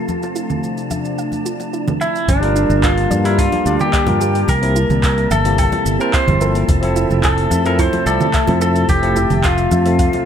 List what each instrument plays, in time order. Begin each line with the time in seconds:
Already playing: analog synth pad C3 F3 A3, tine electric piano F3 C4 A4 E5, clean electric guitar F4, synth texture A5
0.08 analog synth pad D4, high conga, shaker
0.23 high bongo, shaker
0.36 synth arpeggio sound E4, shaker
0.50 high conga, low conga, shaker
0.63 shaker
0.77 shaker
0.91 synth arpeggio sound E5, high conga, shaker
1.05 shaker
1.18 synth arpeggio sound F5, shaker
1.32 high conga, shaker
1.46 synth arpeggio sound F4, shaker
1.60 high bongo, shaker
1.73 synth arpeggio sound E4, shaker
1.88 high conga, low conga, shaker
2.01 clean electric guitar E4, synth arpeggio sound E5, shaker
2.15 shaker
2.28 fingered electric bass G1, analog synth pad D3 G3 A#3 F4, clean electric guitar D4, synth texture A5, kick, open hi-hat, high conga, shaker
2.41 tine electric piano G3 D4 F4 A#4, open hi-hat
2.56 synth arpeggio sound D4, shaker
2.70 fingered electric bass G1, high conga, shaker
2.83 clean electric guitar F4, kick, clap, open hi-hat, shaker
2.98 open hi-hat
3.10 fingered electric bass G2, synth arpeggio sound D5, high conga, shaker
3.24 tine electric piano G3 D4 F4 A#4, clean electric guitar E4, open hi-hat, shaker
3.38 synth arpeggio sound D4, clean electric guitar F4, kick, open hi-hat, shaker
3.52 open hi-hat, high bongo, high conga
3.65 fingered electric bass D2, tine electric piano G3 D4 F4 D5, shaker
3.79 clean electric guitar G4, high bongo, low conga, shaker
3.93 synth arpeggio sound D5, kick, clap, open hi-hat, shaker
4.07 fingered electric bass G2, tine electric piano G3 D4 F4 A#4, open hi-hat, high conga, low conga
4.21 synth arpeggio sound G4, shaker
4.35 open hi-hat, shaker
4.48 fingered electric bass C2, analog synth pad C3 E5, clean electric guitar A#4, kick, open hi-hat, high conga, shaker
4.62 tine electric piano C3 C4 E4 A#4, open hi-hat
4.76 synth arpeggio sound E4, shaker
4.89 fingered electric bass C2, high conga, low conga, shaker
5.03 kick, clap, open hi-hat, shaker
5.18 open hi-hat
5.31 fingered electric bass G1, clean electric guitar A4, synth arpeggio sound E5, high conga, shaker
5.44 tine electric piano C3 A#3 C4 E4, open hi-hat, shaker
5.58 clean electric guitar A4, synth arpeggio sound G5, kick, open hi-hat, shaker
5.72 open hi-hat, high bongo, high conga
5.86 fingered electric bass G1, shaker
5.99 tine electric piano C3 C4 E4 C5, clean electric guitar A#4, shaker
6.13 clean electric guitar C5, synth arpeggio sound E5, kick, clap, open hi-hat, shaker
6.27 fingered electric bass G1, open hi-hat, high conga, low conga
6.40 tine electric piano F3 C4 E4 A4, synth arpeggio sound A#4, shaker
6.55 open hi-hat, high bongo, shaker
6.68 fingered electric bass F1, analog synth pad F3 A3, kick, open hi-hat, high conga, shaker
6.81 tine electric piano F3 C4 E4 A4, open hi-hat
6.96 synth arpeggio sound E4, shaker
7.10 fingered electric bass F1, high conga, shaker
7.23 clean electric guitar A4, kick, clap, open hi-hat, shaker
7.38 open hi-hat
7.51 fingered electric bass F2, synth arpeggio sound E5, high conga, shaker
7.64 tine electric piano F3 C4 E4 A4, clean electric guitar A#4, open hi-hat, shaker
7.79 synth arpeggio sound E4, clean electric guitar C5, kick, open hi-hat, shaker
7.93 open hi-hat, high bongo, high conga
8.05 fingered electric bass C2, tine electric piano F3 C4 E4 D5, clean electric guitar A4, shaker
8.20 high bongo, low conga, shaker
8.34 synth arpeggio sound E5, kick, clap, open hi-hat, shaker
8.47 fingered electric bass F2, tine electric piano F3 C4 E4 A4, open hi-hat, high conga, low conga
8.61 synth arpeggio sound A4, clean electric guitar A4, shaker
8.76 open hi-hat, shaker
8.89 fingered electric bass F1, clean electric guitar G4, kick, open hi-hat, high conga, shaker
9.02 tine electric piano F3 C4 E4 A4, open hi-hat
9.16 synth arpeggio sound E4, low conga, shaker
9.30 fingered electric bass F1, open hi-hat, high conga, low conga, shaker
9.44 clean electric guitar F4, kick, clap, open hi-hat, shaker
9.58 open hi-hat, shaker
9.71 fingered electric bass F2, synth arpeggio sound E5, high conga, shaker
9.85 tine electric piano F3 C4 A4 E5, open hi-hat, shaker
9.99 synth arpeggio sound F5, kick, open hi-hat, shaker
10.13 open hi-hat, high bongo, high conga